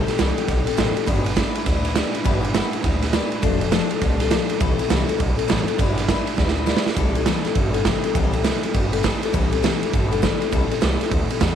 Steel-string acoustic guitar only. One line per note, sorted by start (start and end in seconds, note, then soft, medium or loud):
0.07 0.18 G3 medium
0.07 0.18 C4 medium
0.07 0.19 G4 medium
0.07 0.18 A4 medium
0.18 0.37 C3 medium
0.18 0.37 E3 medium
0.18 0.37 G3 medium
0.18 0.37 C4 loud
0.18 0.36 G4 medium
0.18 0.36 A4 loud
0.37 0.46 G3 soft
0.37 0.47 C4 medium
0.37 0.48 G4 medium
0.37 0.48 A4 medium
0.47 0.66 G3 medium
0.47 0.66 C4 medium
0.47 0.66 G4 medium
0.47 0.64 A4 medium
0.66 0.76 G3 medium
0.66 0.76 C4 medium
0.66 0.77 G4 medium
0.66 0.77 A4 medium
0.77 0.96 C3 medium
0.77 0.96 E3 medium
0.77 0.96 G3 medium
0.77 0.96 C4 medium
0.77 0.95 G4 loud
0.77 0.94 A4 loud
0.95 1.05 G3 medium
0.95 1.07 C4 medium
0.95 1.07 G4 medium
0.95 1.07 A4 medium
1.06 1.25 G3 medium
1.06 1.25 B3 medium
1.06 1.25 D4 medium
1.06 1.25 E4 medium
1.06 1.23 B4 medium
1.24 1.35 D4 soft
1.24 1.36 E4 medium
1.24 1.36 B4 medium
1.36 1.54 G3 medium
1.36 1.55 B3 medium
1.36 1.55 D4 medium
1.36 1.55 E4 medium
1.36 1.53 B4 medium
1.55 1.66 D4 medium
1.55 1.66 E4 soft
1.55 1.66 B4 medium
1.66 1.84 B3 medium
1.66 1.85 D4 medium
1.66 1.85 E4 medium
1.66 1.83 B4 medium
1.84 1.95 D4 soft
1.84 1.95 E4 medium
1.84 1.95 B4 medium
1.95 2.14 G3 medium
1.95 2.14 B3 medium
1.95 2.14 D4 loud
1.95 2.14 E4 loud
1.95 2.13 B4 loud
2.14 2.24 D4 medium
2.14 2.24 E4 medium
2.14 2.25 B4 medium
2.24 2.43 G3 medium
2.24 2.43 B3 medium
2.24 2.43 D4 loud
2.24 2.42 E4 loud
2.24 2.40 B4 loud
2.42 2.54 D4 medium
2.42 2.54 E4 medium
2.42 2.53 B4 medium
2.54 2.73 G3 medium
2.54 2.73 B3 medium
2.54 2.73 D4 medium
2.54 2.73 E4 loud
2.54 2.71 B4 medium
2.72 2.83 D4 soft
2.72 2.83 E4 medium
2.72 2.84 B4 medium
2.83 3.02 B3 medium
2.83 3.02 D4 medium
2.83 3.02 E4 medium
2.83 3.00 B4 medium
3.02 3.12 D4 medium
3.02 3.13 E4 medium
3.02 3.13 B4 medium
3.13 3.32 G3 medium
3.13 3.32 B3 medium
3.13 3.31 D4 medium
3.13 3.30 E4 loud
3.13 3.29 B4 loud
3.31 3.42 D4 medium
3.31 3.43 E4 medium
3.31 3.42 B4 medium
3.42 3.61 F3 medium
3.42 3.61 A3 loud
3.42 3.61 D4 loud
3.42 3.61 A4 medium
3.42 3.60 C5 loud
3.61 3.71 D4 medium
3.61 3.71 A4 medium
3.61 3.72 C5 medium
3.71 3.90 F3 medium
3.71 3.90 A3 medium
3.71 3.91 D4 medium
3.71 3.90 A4 loud
3.71 3.88 C5 loud
3.90 4.01 D4 soft
3.90 4.02 A4 medium
3.90 4.01 C5 medium
4.01 4.20 A3 medium
4.01 4.20 D4 medium
4.01 4.20 A4 medium
4.01 4.19 C5 medium
4.20 4.30 D4 medium
4.20 4.31 A4 medium
4.20 4.31 C5 medium
4.31 4.49 F3 medium
4.31 4.49 A3 medium
4.31 4.50 D4 medium
4.31 4.49 A4 loud
4.31 4.48 C5 medium
4.49 4.61 D4 medium
4.49 4.61 A4 medium
4.49 4.60 C5 medium
4.60 4.79 C3 medium
4.60 4.79 E3 medium
4.60 4.79 G3 medium
4.60 4.79 C4 loud
4.60 4.78 E4 loud
4.60 4.77 A4 loud
4.78 4.89 G3 soft
4.78 4.89 C4 medium
4.78 4.90 E4 medium
4.78 4.90 A4 medium
4.90 5.08 C3 medium
4.90 5.09 E3 medium
4.90 5.09 G3 loud
4.90 5.08 C4 medium
4.90 5.07 E4 loud
4.90 5.06 A4 loud
5.07 5.17 G3 soft
5.07 5.18 C4 medium
5.07 5.19 E4 medium
5.07 5.19 A4 medium
5.19 5.38 G3 medium
5.19 5.38 C4 medium
5.19 5.37 E4 medium
5.19 5.36 A4 medium
5.37 5.47 G3 medium
5.37 5.48 C4 medium
5.37 5.48 E4 medium
5.37 5.49 A4 medium
5.48 5.67 C3 loud
5.48 5.67 E3 medium
5.48 5.67 G3 loud
5.48 5.67 C4 loud
5.48 5.66 E4 medium
5.48 5.66 A4 loud
5.67 5.77 G3 medium
5.67 5.79 C4 medium
5.67 5.79 E4 medium
5.67 5.78 A4 medium
5.78 5.97 G3 medium
5.78 5.98 D4 medium
5.78 5.97 E4 loud
5.78 5.96 B4 loud
5.97 6.08 D4 soft
5.97 6.08 E4 medium
5.97 6.08 B4 medium
6.09 6.27 G3 medium
6.09 6.27 D4 medium
6.09 6.26 E4 loud
6.09 6.25 B4 loud
6.27 6.36 D4 medium
6.27 6.37 E4 soft
6.27 6.38 B4 medium
6.36 6.56 G3 medium
6.36 6.56 D4 medium
6.36 6.56 E4 medium
6.36 6.55 B4 medium
6.56 6.65 D4 medium
6.56 6.66 E4 medium
6.56 6.66 B4 medium
6.66 6.85 G3 medium
6.66 6.86 D4 loud
6.66 6.85 E4 loud
6.66 6.83 B4 loud
6.85 6.97 D4 medium
6.85 6.96 E4 medium
6.85 6.96 B4 medium
6.97 7.15 C3 medium
6.97 7.15 E3 medium
6.97 7.16 G3 medium
6.97 7.16 C4 medium
6.97 7.15 E4 medium
6.97 7.15 A4 medium
7.16 7.26 G3 medium
7.16 7.26 C4 medium
7.16 7.27 E4 medium
7.16 7.27 A4 medium
7.26 7.45 C3 medium
7.26 7.45 E3 loud
7.26 7.46 G3 medium
7.26 7.46 C4 medium
7.26 7.45 E4 loud
7.26 7.44 A4 medium
7.46 7.55 G3 soft
7.46 7.55 C4 medium
7.46 7.56 E4 medium
7.46 7.56 A4 medium
7.56 7.74 G3 medium
7.56 7.74 C4 medium
7.56 7.73 E4 medium
7.56 7.72 A4 medium
7.73 7.85 G3 medium
7.73 7.85 C4 medium
7.73 7.86 E4 medium
7.73 7.85 A4 medium
7.85 8.04 C3 medium
7.85 8.04 E3 medium
7.85 8.05 G3 medium
7.85 8.04 C4 medium
7.85 8.03 E4 medium
7.85 8.02 A4 loud
8.03 8.15 G3 medium
8.03 8.15 C4 medium
8.03 8.15 E4 medium
8.03 8.15 A4 medium
8.15 8.34 C3 medium
8.15 8.34 E3 medium
8.15 8.34 G3 medium
8.15 8.33 C4 loud
8.15 8.32 E4 loud
8.15 8.31 A4 medium
8.32 8.44 G3 medium
8.32 8.44 C4 medium
8.32 8.44 E4 medium
8.32 8.44 A4 medium
8.44 8.63 C3 loud
8.44 8.63 E3 medium
8.44 8.63 G3 medium
8.44 8.63 C4 medium
8.44 8.63 E4 medium
8.44 8.62 A4 loud
8.63 8.73 G3 medium
8.63 8.74 C4 medium
8.63 8.74 E4 medium
8.63 8.74 A4 medium
8.74 8.93 G3 medium
8.74 8.93 C4 medium
8.74 8.92 E4 medium
8.74 8.91 A4 medium
8.92 9.03 G3 medium
8.92 9.03 C4 medium
8.92 9.03 E4 medium
8.92 9.03 A4 medium
9.03 9.22 C3 medium
9.03 9.22 E3 medium
9.03 9.22 G3 medium
9.03 9.23 C4 medium
9.03 9.22 E4 medium
9.03 9.21 A4 loud
9.22 9.32 G3 medium
9.22 9.33 C4 medium
9.22 9.33 E4 medium
9.22 9.33 A4 medium
9.33 9.52 C3 medium
9.33 9.52 E3 medium
9.33 9.52 G3 medium
9.33 9.52 C4 loud
9.33 9.52 E4 medium
9.33 9.51 A4 loud
9.52 9.62 G3 medium
9.52 9.62 C4 medium
9.52 9.63 E4 medium
9.52 9.63 A4 medium
9.62 9.81 C3 medium
9.62 9.82 E3 medium
9.62 9.82 G3 loud
9.62 9.82 C4 medium
9.62 9.81 E4 loud
9.62 9.80 A4 loud
9.81 9.92 G3 soft
9.81 9.93 C4 soft
9.81 9.93 E4 medium
9.81 9.93 A4 medium
9.93 10.11 G3 medium
9.93 10.12 C4 medium
9.93 10.12 E4 medium
9.93 10.10 A4 medium
10.12 10.22 G3 medium
10.12 10.22 C4 medium
10.12 10.22 E4 medium
10.12 10.22 A4 medium
10.22 10.41 C3 medium
10.22 10.41 E3 loud
10.22 10.41 G3 loud
10.22 10.41 C4 loud
10.22 10.40 E4 loud
10.22 10.39 A4 loud
10.41 10.51 G3 medium
10.41 10.52 C4 medium
10.41 10.52 E4 medium
10.41 10.52 A4 medium
10.52 10.70 C3 medium
10.52 10.70 E3 medium
10.52 10.71 G3 loud
10.52 10.70 C4 medium
10.52 10.70 E4 medium
10.52 10.69 A4 loud
10.70 10.80 G3 medium
10.70 10.81 C4 medium
10.70 10.81 E4 medium
10.70 10.81 A4 medium
10.81 11.00 C3 medium
10.81 11.00 E3 medium
10.81 11.00 G3 medium
10.81 11.00 C4 medium
10.81 10.99 E4 medium
10.81 10.98 A4 loud
10.99 11.09 G3 soft
10.99 11.10 C4 medium
10.99 11.11 E4 medium
10.99 11.11 A4 medium
11.11 11.29 G3 medium
11.11 11.29 C4 medium
11.11 11.29 E4 medium
11.11 11.28 A4 medium
11.29 11.40 G3 medium
11.29 11.40 C4 soft
11.29 11.40 E4 medium
11.29 11.41 A4 medium
11.40 11.55 C3 medium
11.40 11.55 E3 medium
11.40 11.55 G3 medium
11.40 11.55 C4 medium
11.40 11.55 E4 loud
11.40 11.55 A4 medium